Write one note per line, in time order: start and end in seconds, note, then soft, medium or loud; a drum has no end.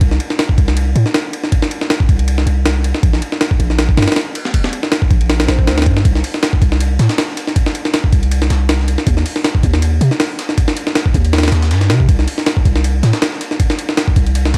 0.01 0.18 C2 loud
0.01 kick loud
0.01 ride medium
0.11 snare soft
0.20 ride medium
0.30 snare soft
0.39 snare loud
0.39 ride medium
0.49 kick loud
0.58 0.94 C2 medium
0.58 kick loud
0.58 ride medium
0.68 snare medium
0.77 ride medium
0.96 1.05 A2 loud
0.96 ride medium
1.06 snare soft
1.14 snare loud
1.14 ride medium
1.33 ride medium
1.44 snare soft
1.52 kick loud
1.52 ride medium
1.62 snare medium
1.71 ride medium
1.81 snare soft
1.90 snare loud
1.90 ride medium
2.00 kick loud
2.09 2.45 C2 medium
2.09 kick medium
2.09 ride medium
2.19 ride soft
2.28 ride medium
2.38 snare soft
2.46 2.93 C2 medium
2.46 ride medium
2.66 snare loud
2.66 ride medium
2.84 ride medium
2.94 snare soft
3.03 3.20 A#1 loud
3.03 kick loud
3.03 ride medium
3.13 snare soft
3.22 ride medium
3.32 snare soft
3.41 snare loud
3.41 ride medium
3.51 kick loud
3.59 3.96 A#1 medium
3.59 ride medium
3.70 snare soft
3.79 snare loud
3.79 ride medium
3.89 kick medium
3.97 4.06 G2 loud
3.97 snare medium
3.97 ride medium
4.02 snare medium
4.02 ride medium
4.08 snare medium
4.08 ride medium
4.12 snare medium
4.12 ride medium
4.16 snare loud
4.16 ride medium
4.35 ride medium
4.45 snare soft
4.54 kick loud
4.54 ride medium
4.64 snare medium
4.73 ride medium
4.83 snare medium
4.92 snare loud
4.92 ride medium
5.02 kick loud
5.11 5.47 A#1 medium
5.11 kick loud
5.11 ride medium
5.21 ride soft
5.30 snare loud
5.30 ride medium
5.30 swell medium
5.40 snare loud
5.40 ride medium
5.48 5.69 A#1 medium
5.48 snare loud
5.48 ride medium
5.59 kick medium
5.67 5.88 D2 medium
5.67 snare loud
5.67 ride medium
5.78 snare medium
5.78 ride medium
5.82 snare medium
5.82 ride medium
5.86 6.03 G2 medium
5.86 kick medium
5.86 ride medium
5.97 snare medium
6.05 6.22 C2 loud
6.05 kick loud
6.05 closed hi-hat medium
6.05 ride medium
6.15 snare soft
6.24 open hi-hat medium
6.24 ride medium
6.34 snare soft
6.43 snare loud
6.43 closed hi-hat loud
6.43 ride medium
6.53 kick loud
6.62 6.98 C2 medium
6.62 kick loud
6.62 closed hi-hat medium
6.62 ride medium
6.72 snare medium
6.80 closed hi-hat loud
6.80 ride loud
6.99 7.08 A2 loud
6.99 snare loud
6.99 closed hi-hat medium
6.99 ride medium
7.09 snare loud
7.09 snare soft
7.09 closed hi-hat medium
7.18 snare loud
7.18 closed hi-hat medium
7.18 ride medium
7.28 snare medium
7.37 snare medium
7.37 closed hi-hat medium
7.37 ride medium
7.47 snare soft
7.56 kick loud
7.56 closed hi-hat medium
7.56 ride medium
7.66 snare soft
7.66 snare medium
7.75 closed hi-hat medium
7.75 ride medium
7.85 snare soft
7.94 snare loud
7.94 closed hi-hat medium
7.94 ride medium
8.04 kick medium
8.12 8.49 C2 medium
8.12 kick loud
8.12 closed hi-hat medium
8.12 ride medium
8.23 closed hi-hat soft
8.23 ride soft
8.31 closed hi-hat medium
8.31 ride loud
8.42 snare medium
8.42 closed hi-hat soft
8.50 8.97 C2 medium
8.50 snare loud
8.50 closed hi-hat medium
8.50 ride medium
8.69 snare loud
8.69 closed hi-hat medium
8.69 ride medium
8.79 snare soft
8.88 closed hi-hat medium
8.88 ride medium
8.98 snare soft
9.07 9.24 D#2 loud
9.07 kick loud
9.07 closed hi-hat medium
9.07 ride medium
9.17 snare soft
9.26 open hi-hat medium
9.26 ride medium
9.36 snare soft
9.44 snare loud
9.44 closed hi-hat medium
9.44 ride medium
9.55 kick loud
9.63 10.00 D#2 loud
9.63 kick loud
9.63 closed hi-hat medium
9.63 ride medium
9.73 snare medium
9.82 closed hi-hat medium
9.82 ride loud
10.01 10.10 C3 loud
10.01 closed hi-hat medium
10.01 ride medium
10.11 snare soft
10.20 snare loud
10.20 open hi-hat medium
10.20 ride medium
10.39 snare loud
10.39 closed hi-hat medium
10.39 ride medium
10.49 snare soft
10.58 kick loud
10.58 closed hi-hat medium
10.58 ride medium
10.68 snare medium
10.77 closed hi-hat medium
10.77 ride medium
10.87 snare medium
10.95 snare loud
10.95 closed hi-hat loud
10.95 ride medium
11.06 kick loud
11.14 11.51 D#2 medium
11.14 kick loud
11.14 closed hi-hat medium
11.14 ride medium
11.24 closed hi-hat soft
11.24 ride soft
11.33 snare loud
11.33 closed hi-hat medium
11.33 ride medium
11.38 snare loud
11.38 ride medium
11.43 snare medium
11.43 snare loud
11.43 closed hi-hat medium
11.43 ride medium
11.48 snare medium
11.48 ride medium
11.52 11.72 D#2 medium
11.52 snare loud
11.52 closed hi-hat medium
11.52 ride medium
11.62 snare loud
11.62 closed hi-hat medium
11.71 11.91 G2 medium
11.71 snare loud
11.71 closed hi-hat medium
11.71 ride medium
11.81 snare soft
11.81 snare loud
11.81 closed hi-hat medium
11.90 12.07 C3 medium
11.90 snare loud
11.90 closed hi-hat medium
11.90 ride medium
12.00 kick medium
12.09 12.26 C2 loud
12.09 kick loud
12.09 closed hi-hat medium
12.09 ride medium
12.19 snare soft
12.28 open hi-hat medium
12.28 ride medium
12.38 snare soft
12.46 snare loud
12.46 closed hi-hat medium
12.46 ride medium
12.57 kick loud
12.65 13.02 C2 medium
12.65 kick loud
12.65 closed hi-hat medium
12.65 ride medium
12.76 snare medium
12.84 closed hi-hat medium
12.84 ride medium
13.03 13.12 A2 loud
13.03 snare loud
13.03 closed hi-hat medium
13.03 ride medium
13.13 snare loud
13.13 snare soft
13.13 closed hi-hat medium
13.22 snare loud
13.22 closed hi-hat medium
13.22 ride medium
13.32 snare medium
13.41 snare medium
13.41 closed hi-hat medium
13.41 ride medium
13.51 snare soft
13.60 kick loud
13.60 closed hi-hat medium
13.60 ride medium
13.70 snare medium
13.79 closed hi-hat medium
13.79 ride medium
13.89 snare soft
13.97 snare loud
13.97 closed hi-hat medium
13.97 ride medium
14.08 kick medium
14.16 14.53 C2 medium
14.16 kick loud
14.16 closed hi-hat medium
14.16 ride medium
14.26 closed hi-hat soft
14.26 ride soft
14.35 closed hi-hat medium
14.35 ride loud
14.45 snare medium
14.45 closed hi-hat soft
14.54 14.58 C2 medium
14.54 snare loud
14.54 closed hi-hat medium
14.54 ride medium